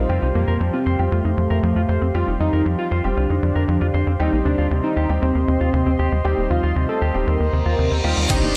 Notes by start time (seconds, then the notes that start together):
Already playing: G4 C5
0.09 F2 G3 C4 F4 G4 F5 C6
0.22 C2 D#4
0.35 F2 F3 A#3
0.48 F2 A#4
0.60 F2 F3
0.73 C4 F4
0.86 F2 C5
0.99 F2 G3 C4 F4 G4
1.12 F2 A3 F4
1.25 F2 D#4
1.37 F2 F3
1.50 F2 A#4
1.63 F2 F3
1.76 F2 F4
1.89 F2 C5
2.02 F2 C4
2.14 F2 G3 C4 F4 G4
2.27 F1 D#4
2.40 F2 F3 D#4
2.53 F2 A#4
2.66 F2 F3
2.78 F4
2.91 F2 C5
3.04 F1 G3 C4 F4 G4
3.17 C2 D4 F4
3.30 F2 D#4
3.43 F2 F3
3.55 F2 A#4
3.68 F2 F3
3.81 F2 F4
3.94 F2 C5
4.07 F2 C4
4.19 D#2 G3 C4 D#4 G4 C5 D#5 C6
4.32 A#1 A#3
4.45 D#2 C3 D4
4.58 D#2 F4
4.71 D#2 C3
4.84 C4 D#4
4.96 D#2 G4
5.09 D#2 G3 C4 D#4 G4
5.22 D#2 C4
5.35 D#2 A#3
5.48 D#2 C3
5.61 D#2 F4
5.73 D#2 C3
5.86 D#2 C4
5.99 D#2 G4
6.12 D#2 G3
6.25 D#2 G3 C4 D#4 G4
6.37 D#1 A#3
6.50 D#2 C3 F4
6.63 D#2 F4
6.76 D#2 C3
6.89 C4 A4
7.02 D#2 G4
7.14 D#1 G3 C4 D#4 G4
7.27 D#2 C4 A#4, reverse cymbal
7.40 D#2 A#3
7.53 D#2 C3
7.66 D#2 F4
7.79 D#2 C3
7.91 D#2 C4
8.04 D#2 G3 C4 D#4 F4 G4
8.17 D#2 G3
8.30 C2 C4 D4 D#4 G4 D5 C6, kick, closed hi-hat, crash, impact, cabasa
8.43 G1 A#3